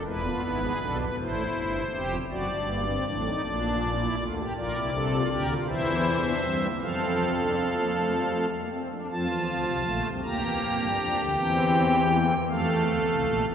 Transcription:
0.05 E1 E2 G#3 E4 B4
0.24 B3 F4
0.43 G#1 G#2 E4
0.63 G#4
0.82 B1 B2 D4 A4
1.00 B4
1.19 A1 A2 E4 C5
1.57 G1 G2
1.94 F1 F2 G4
2.31 F#1 F#2 F#4 D5
2.50 G1 G2 D4
2.68 A#3
2.88 C4
3.07 A1 A2 D4
3.26 D#4
3.43 A#1 A#2 D4
4.00 E4
4.19 D2 D3 F4
4.38 G4
4.57 A#1 A#2 F4 A#4 D5
4.74 C2 C3 E4
4.94 D4 A4
5.13 F4
5.31 D2 D3 G4 A#4
5.51 F4
5.68 E2 E3 E4 C5 E5
6.25 D4
6.44 G2 G3 C4
6.62 A#3
6.81 F2 F3 C4 A4 F5
7.39 D4
7.58 C4
7.78 A#3
7.96 A3
8.15 G3
8.34 A3
8.54 A#3
8.72 C4
8.91 D4
9.10 F2 F3 C4 F4 A5
9.28 E2 E3 F3
9.47 D2 D3
9.66 C2 C3
9.84 A#1 A#2 A3
10.03 C2 C3
10.23 D2 D3 A#3 G4 A#5
10.42 E2 E3
10.61 F2 F3
10.80 G2 G3
10.99 F2 F3 D4
11.19 D2 D3
11.38 E2 E3 C4 G5
12.13 A#3
12.49 F2 F3 A3 A4 F5
12.68 E2 E3
12.87 D2 D3
13.08 C2 C3
13.25 A#1 A#2
13.44 A1 A2

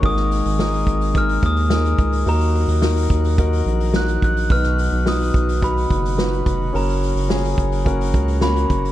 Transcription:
Already playing: A#3
0.02 G#1 G#2 D#3 G#3 D#4 G#4 A#4 D#6, kick, open hi-hat
0.17 snare, open hi-hat
0.31 hi-hat pedal, open hi-hat
0.45 G#1, hi-hat pedal, open hi-hat
0.59 D#4 G#4 A#4 D#6, snare, hi-hat pedal, open hi-hat
0.73 hi-hat pedal, open hi-hat
0.86 G#1, kick, hi-hat pedal, open hi-hat
1.01 hi-hat pedal, open hi-hat
1.14 D#4 G#4 A#4 F6, kick, hi-hat pedal, open hi-hat
1.29 hi-hat pedal, open hi-hat
1.42 D#2 D#6, kick, hi-hat pedal, open hi-hat
1.56 hi-hat pedal, open hi-hat
1.70 D#4 G#4 A#4 D#6, snare, hi-hat pedal, open hi-hat
1.85 hi-hat pedal, open hi-hat
1.98 C#2, kick, hi-hat pedal, open hi-hat
2.12 hi-hat pedal, open hi-hat
2.26 D#2 D#3 F#3 A#3 D#4 F#4 A#4 A#5, hi-hat pedal, open hi-hat
2.40 hi-hat pedal, open hi-hat
2.54 hi-hat pedal, open hi-hat
2.68 D#2, hi-hat pedal, open hi-hat
2.82 D#4 F#4 A#4, snare, hi-hat pedal, open hi-hat
2.96 hi-hat pedal, open hi-hat
3.10 D#2, kick, hi-hat pedal, open hi-hat
3.24 hi-hat pedal, open hi-hat
3.37 D#4 F#4 A#4, kick, hi-hat pedal, open hi-hat
3.52 hi-hat pedal, open hi-hat
3.66 A#1, hi-hat pedal, open hi-hat
3.80 hi-hat pedal, open hi-hat
3.94 D#4 F#4 A#4 F#6, snare, hi-hat pedal, open hi-hat
4.08 hi-hat pedal, open hi-hat
4.22 A#1 F#6, kick, hi-hat pedal, open hi-hat
4.36 hi-hat pedal, open hi-hat
4.50 B1 B2 B3 D#4 F#4 B4 F6, kick, hi-hat pedal, open hi-hat
4.63 snare, hi-hat pedal
4.78 hi-hat pedal, open hi-hat
4.92 B1, open hi-hat
5.05 D#4 F#4 B4 D#6, snare, hi-hat pedal, open hi-hat
5.20 hi-hat pedal, open hi-hat
5.34 B1, kick, hi-hat pedal, open hi-hat
5.48 hi-hat pedal, open hi-hat
5.62 D#4 F#4 B4 B5, kick, hi-hat pedal, open hi-hat
5.77 hi-hat pedal, open hi-hat
5.90 F#1, kick, hi-hat pedal, open hi-hat
6.05 hi-hat pedal, open hi-hat
6.17 D#4 F#4 B4, snare, hi-hat pedal, open hi-hat
6.33 hi-hat pedal
6.46 F1, kick, hi-hat pedal, open hi-hat
6.61 open hi-hat
6.73 F#1 C#3 F#3 A#3 C#4 F#4 A#4 A#5, hi-hat pedal, open hi-hat
6.89 hi-hat pedal, open hi-hat
7.03 hi-hat pedal, open hi-hat
7.15 F#1, hi-hat pedal, open hi-hat
7.29 C#4 F#4 G#4, snare, hi-hat pedal, open hi-hat
7.44 hi-hat pedal, open hi-hat
7.58 F#1, kick, hi-hat pedal, open hi-hat
7.72 hi-hat pedal, open hi-hat
7.85 C#4 F#4 A#4, kick, hi-hat pedal, open hi-hat
8.01 hi-hat pedal, open hi-hat
8.14 C#2, kick, hi-hat pedal, open hi-hat
8.28 hi-hat pedal, open hi-hat
8.41 A#3 C#4 F#4 B5, snare, hi-hat pedal, open hi-hat
8.56 hi-hat pedal, open hi-hat
8.70 F#1, kick, hi-hat pedal, open hi-hat
8.84 hi-hat pedal, open hi-hat

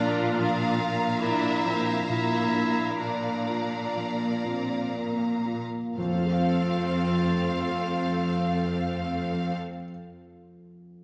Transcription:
Already playing: A#2 F3 A#3 D4 A#4 D5 F5 A#5
0.00 F4
0.39 F3 A#3 D4 F4 F5 A#5
0.80 A#3
1.21 D4 E4 A#4 E5
1.65 F3 C4
2.07 A#2 A#3 E4 E5
2.54 D4
2.99 A#3 D4 A#4 D5 F5 A#5
3.47 A#3 F4
3.95 F3 A#3
4.44 C4 F4
4.93 A#3 A#4
5.45 A#3 F4
5.96 F2 A3 C4 F4 A4 C5 F5
6.04 F3
6.11 C4
6.18 F4
6.26 A4
6.32 F5

